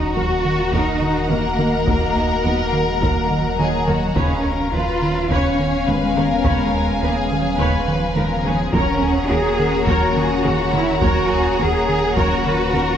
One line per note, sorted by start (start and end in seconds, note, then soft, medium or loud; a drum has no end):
0.00 4.13 D#1 medium
0.00 4.13 A#3 medium
0.00 0.12 D#4 medium
0.00 1.27 F#4 medium
0.00 4.13 F#4 medium
0.00 1.55 A#4 soft
0.00 4.13 A#4 medium
0.00 4.13 D#5 medium
0.00 4.13 F#5 medium
0.00 1.55 A#5 soft
0.00 5.27 A#5 medium
0.16 0.24 D#2 soft
0.16 0.34 D#2 medium
0.16 0.34 F#3 medium
0.16 0.24 F#4 soft
0.16 0.74 F#4 medium
0.16 0.24 A#4 soft
0.45 0.62 D#3 soft
0.73 0.90 D#2 medium
0.73 0.81 D#2 medium
0.73 0.91 D#3 medium
0.73 1.31 D#4 medium
0.73 1.00 A#4 medium
0.73 taiko medium
1.02 1.19 D#3 medium
1.30 1.39 D#2 soft
1.30 1.47 D#3 medium
1.30 1.48 A#3 medium
1.30 1.87 A#3 medium
1.30 1.39 F#4 soft
1.30 1.39 A#4 soft
1.30 3.60 A#4 medium
1.59 1.67 D#2 soft
1.59 1.76 D#3 medium
1.59 1.77 A#3 medium
1.59 1.67 A#4 soft
1.87 2.05 D#2 medium
1.87 1.96 D#2 medium
1.87 2.05 D#3 medium
1.87 2.44 A#3 medium
1.87 2.15 A#4 medium
1.87 taiko medium
2.16 2.33 D#2 medium
2.16 3.84 D#4 soft
2.16 3.84 D#5 soft
2.45 2.62 D#2 medium
2.45 2.53 D#2 soft
2.45 2.63 F#3 medium
2.45 2.64 B3 medium
2.45 2.53 F#4 soft
2.45 2.53 A#4 soft
2.65 2.83 A#3 medium
2.73 2.90 D#3 medium
2.85 3.02 G#3 medium
3.02 3.19 D#2 medium
3.02 3.10 D#2 medium
3.02 3.19 D#3 medium
3.02 3.31 A#3 medium
3.02 3.29 A#4 medium
3.02 taiko medium
3.30 3.48 D#3 medium
3.30 4.17 F#3 medium
3.59 3.67 D#2 soft
3.59 3.76 D#3 medium
3.59 3.77 A#3 medium
3.59 3.67 F#4 soft
3.59 3.87 G#4 medium
3.59 3.68 A#4 soft
3.59 5.27 C#5 soft
3.88 3.96 D#2 soft
3.88 4.05 D#3 medium
3.88 4.05 A#3 medium
3.88 4.16 F#4 soft
3.88 3.96 A#4 soft
4.15 8.70 D#1 medium
4.15 4.33 D#2 medium
4.15 4.24 D#2 medium
4.15 4.34 C#3 medium
4.15 8.56 B3 medium
4.15 8.74 B3 medium
4.15 4.72 C#4 medium
4.15 8.72 C#4 medium
4.15 4.45 G#4 soft
4.15 4.43 B4 medium
4.15 4.43 C#5 medium
4.15 8.73 C#5 medium
4.15 8.73 F5 medium
4.15 8.56 F5 medium
4.15 8.74 F5 medium
4.15 taiko medium
4.45 4.62 D#2 medium
4.45 4.74 A#4 medium
4.73 4.90 D#2 medium
4.73 4.82 D#2 soft
4.73 4.91 F3 medium
4.73 5.30 F4 medium
4.73 4.81 B4 soft
4.73 5.30 B4 medium
5.02 5.19 D#3 medium
5.30 5.39 D#2 medium
5.30 5.48 D#2 medium
5.30 5.48 C#3 medium
5.30 5.88 C#4 medium
5.30 5.57 B4 medium
5.30 5.57 C#5 medium
5.30 5.87 C#5 medium
5.30 8.74 G#5 medium
5.30 taiko medium
5.59 5.76 D#3 medium
5.88 5.96 D#2 soft
5.88 6.05 D#3 medium
5.88 6.05 G#3 medium
5.88 6.44 G#3 medium
5.88 5.96 B4 soft
5.88 6.17 B4 medium
6.16 6.24 D#2 soft
6.16 6.33 D#3 medium
6.16 6.33 G#3 medium
6.16 7.01 A#4 medium
6.16 6.25 B4 medium
6.16 6.25 C#5 medium
6.45 6.53 D#2 medium
6.45 6.62 D#2 medium
6.45 6.62 C#3 medium
6.45 7.01 G#3 medium
6.45 6.72 B4 medium
6.45 6.72 C#5 medium
6.45 taiko medium
6.74 6.91 D#2 soft
6.74 8.41 A#5 soft
7.02 7.10 D#2 soft
7.02 7.20 D#2 medium
7.02 7.19 F3 medium
7.02 7.21 A#3 medium
7.02 7.58 G#4 medium
7.02 7.10 B4 soft
7.22 7.40 G#3 medium
7.31 7.49 D#3 medium
7.31 8.98 G#4 soft
7.41 7.60 F#3 medium
7.59 7.67 D#2 medium
7.59 7.77 D#2 medium
7.59 7.76 C#3 medium
7.59 7.87 G#3 medium
7.59 8.16 B4 medium
7.59 7.86 B4 medium
7.59 7.86 C#5 medium
7.59 taiko medium
7.88 8.05 D#3 medium
7.88 8.73 F3 medium
8.16 8.24 D#2 medium
8.16 8.33 D#3 medium
8.16 8.34 G#3 medium
8.16 8.45 A#4 medium
8.16 8.25 B4 soft
8.44 8.52 D#2 soft
8.44 8.62 D#3 medium
8.44 8.62 G#3 medium
8.44 8.74 G#4 medium
8.44 8.54 B4 medium
8.44 8.54 C#5 soft
8.73 12.97 D#1 medium
8.73 8.81 D#2 medium
8.73 8.90 D#2 medium
8.73 8.90 F#3 medium
8.73 12.97 A#3 medium
8.73 9.30 C#4 medium
8.73 12.97 C#4 medium
8.73 12.97 A#4 medium
8.73 9.02 A#4 medium
8.73 9.01 A#4 medium
8.73 12.97 C#5 medium
8.73 9.01 C#5 medium
8.73 12.97 F#5 medium
8.73 12.97 A#5 medium
8.73 taiko medium
9.02 9.19 D#2 medium
9.02 9.31 G#4 medium
9.30 9.38 D#2 soft
9.30 9.48 D#2 medium
9.30 9.48 A#3 medium
9.30 9.88 F#4 medium
9.30 9.87 G#4 loud
9.30 9.39 A#4 soft
9.59 9.77 D#3 medium
9.59 11.26 A#3 soft
9.59 11.26 A#4 soft
9.87 9.96 D#2 medium
9.87 10.05 D#2 medium
9.87 10.04 F#3 medium
9.87 10.73 F#4 medium
9.87 10.16 A#4 medium
9.87 10.14 A#4 medium
9.87 10.14 C#5 medium
9.87 taiko medium
10.16 10.34 D#3 medium
10.16 10.45 G#4 medium
10.43 10.53 D#2 medium
10.43 10.62 D#3 medium
10.43 10.62 C#4 medium
10.43 11.02 F#4 medium
10.43 12.12 G#4 medium
10.43 10.54 A#4 medium
10.73 10.81 D#2 soft
10.73 10.91 D#3 medium
10.73 10.90 C#4 medium
10.73 11.02 E4 medium
10.73 10.82 A#4 medium
10.73 10.82 C#5 soft
11.01 11.10 D#2 medium
11.01 11.20 D#2 medium
11.01 11.19 F#3 medium
11.01 11.58 F#4 medium
11.01 11.30 A#4 medium
11.01 11.28 A#4 medium
11.01 11.29 C#5 medium
11.01 taiko medium
11.29 11.49 D#2 medium
11.29 11.59 G#4 medium
11.59 11.67 D#2 soft
11.59 11.77 D#2 medium
11.59 11.76 A#3 medium
11.59 11.88 F#4 medium
11.59 12.17 G#4 medium
11.59 11.68 A#4 medium
11.87 12.06 D#3 medium
11.87 12.15 G#4 medium
12.16 12.24 D#2 medium
12.16 12.34 D#2 medium
12.16 12.33 F#3 medium
12.16 12.97 F#4 medium
12.16 12.44 A#4 medium
12.16 12.43 A#4 medium
12.16 12.43 C#5 medium
12.16 taiko medium
12.45 12.63 D#3 medium
12.45 12.97 A#4 medium
12.45 12.73 B4 medium
12.73 12.82 D#2 medium
12.73 12.91 D#3 medium
12.73 12.91 C#4 medium
12.73 12.82 A#4 medium
12.73 12.97 A#4 medium